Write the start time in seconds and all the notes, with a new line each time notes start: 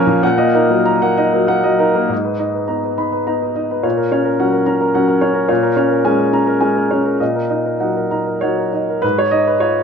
Already playing: A#2 F3 A#3 C#4 A#4 C#5 G#5 A#5
0.07 F3 A#3
0.23 A#2 F#5
0.38 A#3 D#5
0.55 D#4 A#4
0.70 F#3 A#3
0.86 A#5
1.02 A#3 F#5
1.18 D#4 D#5
1.33 F#3 A#4
1.48 A#3 F#5
1.63 F#3 D#5
1.79 D#4 A#4
1.95 A#3
2.09 G#2 D#5
2.25 B4
2.39 D#4 D#5
2.54 B4
2.68 B3 D#4 A#5
2.83 B4
2.98 D#4 B5
3.12 B4
3.27 B3 D#4 A#5
3.42 B4
3.55 D#4 D#5
3.71 B4
3.83 A#2 C#5
3.97 A#4
4.11 C#4 C#5
4.24 A#4
4.39 F#3 C#4 F#5
4.52 A#4
4.66 C#4 A#5
4.81 A#4
4.95 F#3 C#4 F#5
5.08 A#4
5.21 C#4 C#5
5.34 A#4
5.48 A#2 C#5
5.62 A#4
5.76 C#4 C#5
5.91 A#4
6.05 G#3 C#4 G#5
6.19 A#4
6.33 C#4 A#5
6.47 A#4
6.60 G#3 C#4 G#5
6.76 A#4
6.91 C#4 C#5
7.05 A#4
7.20 A#2 D#5
7.35 A#4
7.50 D#4 D#5
7.66 A#4
7.80 F#3 D#4 F#5
7.96 A#4
8.11 D#4 A#5
8.27 A#4
8.41 F#3 D#4 C#5 F#5
8.58 A#4
8.73 D#4 D#5
8.90 A#4
9.02 G#2 B4
9.18 C#5
9.31 D#4 D#5
9.47 B4
9.60 F4 C#5